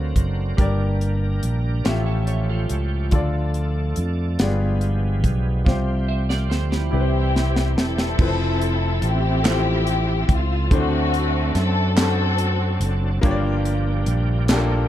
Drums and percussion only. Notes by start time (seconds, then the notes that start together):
0.16 kick, closed hi-hat
0.58 kick, closed hi-hat
1.01 closed hi-hat
1.43 closed hi-hat
1.85 snare, closed hi-hat
2.27 closed hi-hat
2.70 closed hi-hat
3.11 kick, closed hi-hat
3.54 closed hi-hat
3.96 closed hi-hat
4.39 snare, closed hi-hat
4.81 closed hi-hat
5.24 kick, closed hi-hat
5.66 kick, snare
6.30 snare
6.51 snare
6.72 snare
7.36 snare
7.56 snare
7.78 snare
7.98 snare
8.19 kick, crash
8.62 closed hi-hat
9.02 closed hi-hat
9.45 snare, clap, closed hi-hat
9.87 closed hi-hat
10.29 kick, closed hi-hat
10.71 kick, closed hi-hat
11.14 closed hi-hat
11.55 snare, closed hi-hat
11.97 snare, clap, closed hi-hat
12.38 closed hi-hat
12.81 closed hi-hat
13.23 kick, closed hi-hat
13.65 closed hi-hat
14.06 closed hi-hat
14.48 snare, clap, closed hi-hat